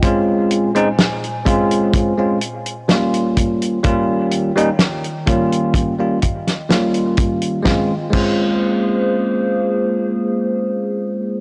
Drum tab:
CC |----------------|----------------|--x-------------|
HH |x-xxxxxxx-xxxxxx|x-xxxxxxx-xxxxxx|----------------|
SD |----o-------o---|----o------oo---|o---------------|
BD |o-----o-o-----o-|o-----o-o-o---o-|o-o-------------|